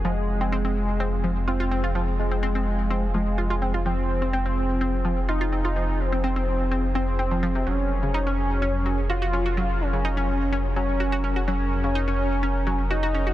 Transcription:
X:1
M:4/4
L:1/16
Q:1/4=126
K:Fphr
V:1 name="Analog synth pad"
[F,CFA]16- | [F,CFA]16- | [F,CFA]16- | [F,CFA]16 |
[G,DB]16- | [G,DB]16- | [G,DB]16 |]
V:2 name="Analog synth lead"
A,12 C4- | C2 A,8 A,6 | C12 E4- | E2 C8 C6 |
D12 F4- | F2 D8 D6 | D12 E4 |]
V:3 name="Synth arpeggio sound"
F, z2 C C C z2 C z F, z F F C F | F, z2 C C C z2 C z F, z F F C F | F, z2 C C C z2 C z F, z F F C F | F, z2 C C C z2 C z C z C F, F, C, |
G, z2 D, E D z2 D z G, z G G D G | G, z2 D, E D z2 D z G, z G G D G | G, z2 D, E D z2 D z G, z G G D G |]
V:4 name="Detuned saw bass" clef=bass
F,,,16- | F,,,16- | F,,,16- | F,,,16 |
F,,,16- | F,,,16- | F,,,16 |]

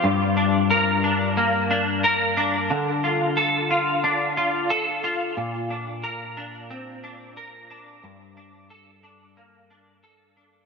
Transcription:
X:1
M:4/4
L:1/8
Q:1/4=90
K:Gm
V:1 name="Clean electric guitar"
G,, D B D B, D B D | D, F A F D F A F | B,, D B D C D B D | G,, D A D B, D A D |]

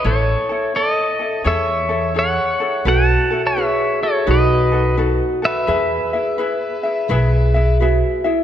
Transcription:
X:1
M:4/4
L:1/16
Q:"Swing" 1/4=85
K:E
V:1 name="Pedal steel guitar"
[Ac]4 [Ad]4 [ce]4 [cf]4 | [fa]3 [ce]3 [Ac]2 [Bd]4 z2 [Be]2- | [Be]12 z4 |]
V:2 name="Ukulele"
[EAc]2 [EA]2 [EAc]2 [EA]2 [EGAc]2 [EGA]2 [EGAc]2 [EGA]2 | [EFAB]2 [EFA]2 [EFB]2 [EF]2 [DFAB]2 [DFA]2 [DFAB]2 [FA]2 | [EGBe]2 [EGe]2 [EGBe]2 [EGe]2 [EGBe]2 [EGe]2 [EGBe]2 [EGe]2 |]
V:3 name="Vibraphone"
z16 | F4 G4 F8 | G8 G4 F2 E2 |]
V:4 name="Upright bass" clef=bass
A,,,2 z6 E,,8 | B,,,2 z6 B,,,8 | E,,2 z6 B,,,8 |]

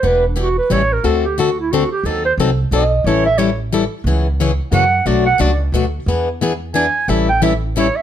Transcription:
X:1
M:3/4
L:1/16
Q:"Swing" 1/4=179
K:Amix
V:1 name="Clarinet"
B2 D2 F2 B2 c2 _B2 | A2 G2 F2 E2 F2 G2 | A2 ^B2 z4 ^d4 | c2 e2 c2 z6 |
z8 f4 | d2 f2 d2 z6 | z8 ^g4 | e2 g2 e2 z2 c2 e2 |]
V:2 name="Steel-string acoustic guitar"
[E,B,DG]2 z2 [E,B,DG] z3 [E,G,CEA] z3 | [D,A,=CFA]2 z2 [D,A,CFA] z3 [D,A,CFA] z3 | [^D,F,^B,^DA]2 z2 [D,F,B,DA] z3 [D,F,B,DA] z3 | [E,G,CEA]2 z2 [E,G,CEA] z3 [E,G,CEA] z3 |
[C,E,B,C^G]2 z2 [C,E,B,CG] z3 [C,E,^A,CF] z3 | [B,,F,A,DF]2 z2 [B,,F,A,DF] z3 [B,,F,A,DF] z3 | [E,B,D^G]2 z2 [E,B,DG] z3 [E,B,DG] z3 | [E,G,CEA]2 z2 [E,G,CEA] z3 [E,G,CEA] z3 |]
V:3 name="Upright bass" clef=bass
E,,,8 A,,,4 | D,,12 | ^D,,4 ^B,,,4 =B,,,4 | A,,,12 |
C,,8 F,,4 | B,,,4 C,,4 D,,4 | E,,12 | A,,,12 |]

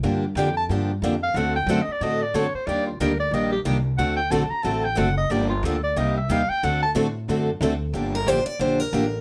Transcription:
X:1
M:4/4
L:1/8
Q:"Swing" 1/4=182
K:Gm
V:1 name="Clarinet"
z2 g a z3 f | ^f g (3f e d e d ^c =c | d F B d e G z2 | ^f g a b a g f e |
d F A d e =e f g | ^f a z6 | z8 |]
V:2 name="Steel-string acoustic guitar"
z8 | z8 | z8 | z8 |
z8 | z8 | z B c d c B3 |]
V:3 name="Steel-string acoustic guitar"
[D,F,B,DG] z [D,F,B,DG] z [D,F,B,DG] z [D,F,B,DG] z | [D,A,C^FA] z [D,A,CFA] z [D,A,CFA] z [D,A,CFA] z | [E,G,B,DG] z [E,G,B,DG] z [E,G,B,DG] z [E,G,B,DG] z | [D,A,C^FA] z [D,A,CFA] z [D,A,CFA] z [D,A,CFA] z |
[D,F,B,DG] z [D,F,B,DG] z [C,G,B,EG] z [C,G,B,EG] z | [D,A,C^FA] z [D,A,CFA] z [D,A,CFA] z [D,A,CFA] z | [D,F,B,DG] z [D,F,B,DG] z [D,F,B,DG] z [D,F,B,DG] z |]
V:4 name="Steel-string acoustic guitar"
[D,F,B,DG] z [D,F,B,DG] z [D,F,B,DG] z [D,F,B,DG] z | [D,A,C^FA] z [D,A,CFA] z [D,A,CFA] z [D,A,CFA] z | [E,G,B,DG] z [E,G,B,DG] z [E,G,B,DG] z [E,G,B,DG] z | [D,A,C^FA] z [D,A,CFA] z [D,A,CFA] z [D,A,CFA] z |
[D,F,B,DG] z [D,F,B,DG] z [C,G,B,EG] z [C,G,B,EG] z | [D,A,C^FA] z [D,A,CFA] z [D,A,CFA] z [D,A,CFA] z | [D,F,B,DG] z [D,F,B,DG] z [D,F,B,DG] z [D,F,B,DG] z |]
V:5 name="Upright bass" clef=bass
G,,2 F,,2 G,,2 F,,2 | D,,2 ^F,, z A,,2 F,, z | E,,2 D,,2 B,,,2 C,,2 | D,,2 B,,, z A,,,2 ^F,,,2 |
G,,,2 D,,2 C,,2 E,, z | D,,2 A,,2 ^F,,2 D,,2 | G,,,2 A,,, z B,,,2 A,,,2 |]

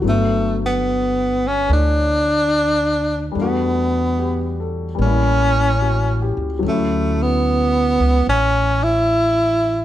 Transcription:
X:1
M:4/4
L:1/16
Q:"Swing" 1/4=73
K:D
V:1 name="Grand piano"
F2 z12 z2 | z4 G2 A3 z3 F2 G2- | G z12 z3 |]
V:2 name="Grand piano"
[D,F,A,B,]8 [A,c]8 | [G,A,DF]8 [G,_B,CE]8 | [F,A,CE]16 |]
V:3 name="Tenor saxophone"
A,2 B,4 C2 D8 | B,6 z2 C6 z2 | A,2 B,6 C2 E6 |]
V:4 name="Upright bass" clef=bass
G,,,8 D,,8 | E,,8 A,,,6 C,,2 | D,,6 C,,2 A,,,8 |]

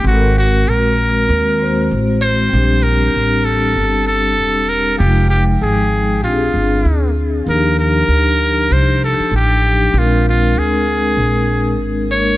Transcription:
X:1
M:4/4
L:1/16
Q:"Swing 16ths" 1/4=97
K:Bbmix
V:1 name="Muted trumpet"
_G2 G2 B8 z2 c2- | c2 B4 =A4 A4 B2 | G2 G2 A4 F6 z2 | B2 B6 c2 =A2 G4 |
F2 F2 A8 z2 _d2 |]
V:2 name="Vibraphone"
[A,C_G=AB]8- [_A,CG=AB]2 [_A,CGc]6 | [G,CDG]16 | [F,A,EFg]8 [CDGA]8 | [F,DEG]12- [F,DEG]2 [F,DEG]2 |
[A,CDB]12- [A,CDB]2 [A,B,DB]2 |]
V:3 name="Upright bass" clef=bass
A,,,4 B,,,4 E,,4 =A,,,4 | B,,,4 =A,,,4 G,,,4 =E,,,4 | F,,,4 A,,,4 B,,,2 G,,,2 D,,4 | E,,4 D,,4 C,,3 z =A,,,4 |
B,,,4 D,,4 B,,,4 A,,,4 |]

